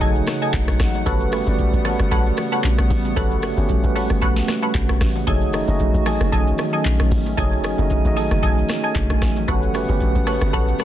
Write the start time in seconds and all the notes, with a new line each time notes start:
Already playing: F#1 C#3 F#3 A3 D#4 F#4 G#4 C#5 D#5 F#5
0.01 A4 D#5 G#5, kick, low conga, shaker
0.16 shaker
0.27 cross-stick, snare, open hi-hat, low bongo, shaker
0.42 A4 D#5 G#5
0.54 F#1, kick, clap, high bongo, shaker
0.68 kick, cross-stick, high bongo, shaker
0.80 A1, cross-stick, snare, open hi-hat, low bongo, shaker
0.94 low bongo, shaker
1.06 G1 G3 A3 B3 C#4 F#4 G4 A4 B4 C#5 F#5, kick, low conga, shaker
1.21 shaker
1.32 A3 C#4 F#4 G4 B4, cross-stick, open hi-hat, shaker
1.46 G1 C#3 A3 F#4 G4 D5, shaker
1.59 kick, high bongo, low conga, shaker
1.73 A1, shaker
1.85 A4 B4 C#5 F#5, cross-stick, open hi-hat, low bongo, shaker
1.99 G1, cross-stick, shaker
2.11 A4 B4 C#5 F#5, kick, low conga, shaker
2.26 shaker
2.37 cross-stick, open hi-hat, low bongo, shaker
2.52 A4 B4 C#5 F#5
2.64 kick, clap, high bongo, shaker
2.78 kick, cross-stick, high bongo, shaker
2.90 A1, open hi-hat, low bongo, shaker
3.05 low bongo, shaker
3.16 G1 A3 C#4 F#4 G4 A4 B4 C#5 F#5, kick, low conga, shaker
3.31 shaker
3.42 cross-stick, open hi-hat, shaker
3.57 G1 A3 C#4 F#4 G4 C#5, shaker
3.69 kick, high bongo, low conga, shaker
3.83 A1 A3 C#4 F#4 G4 B4, shaker
3.95 A4 B4 C#5 F#5, open hi-hat, low bongo, shaker
4.10 G1, cross-stick, shaker
4.21 A4 B4 C#5 F#5, kick, low conga, shaker
4.36 snare, shaker
4.47 cross-stick, snare, open hi-hat, low bongo, shaker
4.62 A4 B4 C#5 F#5, shaker
4.74 G1, kick, clap, high bongo, shaker
4.89 kick, cross-stick, high bongo, shaker
5.00 A1, cross-stick, snare, open hi-hat, low bongo, shaker
5.15 low bongo, shaker
5.27 F#1 D#3 F#3 A3 C#4 D#4 F#4 G#4 A4 C#5 D#5 G#5, kick, low conga, shaker
5.42 shaker
5.53 A3 D#4 F#4 G#4 D#5, cross-stick, open hi-hat, shaker
5.67 F#1 A3 D#4 F#4 G#4 D#5, shaker
5.80 kick, high bongo, low conga, shaker
5.94 A1, shaker
6.06 A4 D#5 G#5, cross-stick, open hi-hat, low bongo, shaker
6.21 F#1, cross-stick, shaker
6.32 A4 D#5 G#5, kick, low conga, shaker
6.47 shaker
6.58 cross-stick, open hi-hat, low bongo, shaker
6.73 A4 D#5 G#5
6.85 kick, clap, high bongo, shaker
6.99 kick, cross-stick, high bongo, shaker
7.11 A1, open hi-hat, low bongo, shaker
7.26 low bongo, shaker
7.37 F#1 A3 D#4 F#4 G#4 A4 C#5 D#5 G#5, kick, low conga, shaker
7.52 shaker
7.64 cross-stick, open hi-hat, shaker
7.78 F#1 A3 D#4 F#4 G#4 D#5, shaker
7.90 kick, high bongo, low conga, shaker
8.05 A1 A3 D#4 F#4 G#4 D#5, shaker
8.16 A4 D#5 G#5, open hi-hat, low bongo, shaker
8.31 F#1, cross-stick, shaker
8.43 A4 D#5 G#5, kick, low conga, shaker
8.58 shaker
8.69 cross-stick, snare, open hi-hat, low bongo, shaker
8.84 A4 D#5 G#5
8.95 F#1, kick, clap, high bongo, shaker
9.10 kick, cross-stick, high bongo, shaker
9.22 A1, cross-stick, snare, open hi-hat, low bongo, shaker
9.36 low bongo, shaker
9.48 G1 C#3 G3 A3 B3 C#4 F#4 G4 A4 B4 C#5 F#5, kick, low conga, shaker
9.62 shaker
9.74 A3 C#4 F#4 G4 B4, cross-stick, open hi-hat, shaker
9.89 G1 A3 C#4 F#4 G4 B4, shaker
10.01 kick, high bongo, low conga, shaker
10.15 A1, shaker
10.27 A4 B4 C#5 F#5, cross-stick, open hi-hat, low bongo, shaker
10.41 G1, cross-stick, shaker
10.53 A4 B4 C#5 F#5, kick, low conga, shaker
10.68 shaker
10.79 cross-stick, open hi-hat, low bongo, shaker